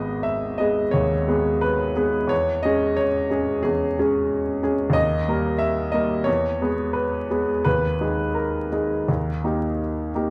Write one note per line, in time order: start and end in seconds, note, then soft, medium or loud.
0.00 2.33 G#1 soft
0.00 0.56 G#3 soft
0.00 0.57 B3 soft
0.00 0.57 G#4 soft
0.00 0.25 D#5 medium
0.23 0.59 E5 medium
0.58 0.91 G#3 soft
0.58 0.91 B3 soft
0.58 0.91 G#4 soft
0.58 0.93 D#5 medium
0.91 1.27 D#2 soft
0.91 1.61 C#5 medium
1.28 1.92 G#3 soft
1.28 1.92 B3 soft
1.28 1.92 G#4 soft
1.61 2.30 B4 medium
1.96 2.27 G#3 soft
1.96 2.27 B3 soft
1.96 2.27 G#4 soft
2.27 2.62 E2 soft
2.27 2.64 C#5 medium
2.63 3.28 G#3 soft
2.63 3.28 C#4 soft
2.63 3.28 G#4 soft
2.63 2.97 D#5 medium
2.97 3.64 C#5 medium
3.30 3.61 G#3 soft
3.30 3.61 C#4 soft
3.30 3.61 G#4 soft
3.63 3.97 E2 soft
3.63 3.98 G#4 medium
3.99 4.60 G#3 soft
3.99 4.60 C#4 soft
3.99 4.60 G#4 soft
4.63 4.92 G#3 soft
4.63 4.92 C#4 soft
4.63 4.93 G#4 soft
4.90 5.24 D#2 soft
4.90 5.59 D#5 medium
5.28 5.89 G3 soft
5.28 5.90 A#3 soft
5.28 5.90 A#4 soft
5.59 5.92 E5 medium
5.92 6.24 G3 soft
5.92 6.24 A#3 soft
5.92 6.24 A#4 soft
5.92 6.26 D#5 medium
6.24 6.60 E2 soft
6.24 6.94 C#5 medium
6.61 7.27 G#3 soft
6.61 7.27 B3 soft
6.61 7.27 G#4 soft
6.93 7.63 B4 medium
7.30 7.62 G#3 soft
7.30 7.62 B3 soft
7.30 7.62 G#4 soft
7.65 8.00 D#2 soft
7.65 8.36 B4 medium
8.01 8.68 G#3 soft
8.01 8.68 D#4 soft
8.01 8.68 G#4 soft
8.34 9.78 A#4 soft
8.72 9.04 G#3 soft
8.72 9.05 D#4 soft
8.72 9.05 G#4 soft
9.08 9.43 D#2 soft
9.44 10.11 A#3 soft
9.44 10.11 D#4 soft
9.44 10.11 G4 soft
10.15 10.30 A#3 soft
10.15 10.30 D#4 soft
10.15 10.30 G4 soft